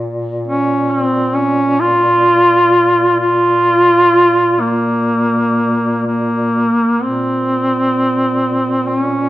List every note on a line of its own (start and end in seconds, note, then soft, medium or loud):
0.00 6.84 A#2 soft
0.47 0.92 C#4 medium
0.90 1.37 C4 medium
1.35 1.82 C#4 loud
1.80 3.18 F4 loud
3.19 4.62 F4 loud
4.61 6.06 A#3 medium
6.06 7.03 A#3 medium
7.01 9.29 A#2 soft
7.01 8.90 C4 medium
8.88 9.29 C#4 medium